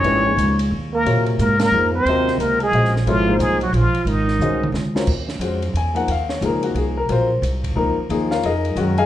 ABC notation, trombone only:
X:1
M:3/4
L:1/8
Q:"Swing" 1/4=179
K:Ebdor
V:1 name="Trombone"
D3 z2 B,- | B, z B, B,2 C- | C2 B, A,2 z | F,2 A, G, F,2 |
E,4 z2 | z6 | z6 | z6 |
z6 |]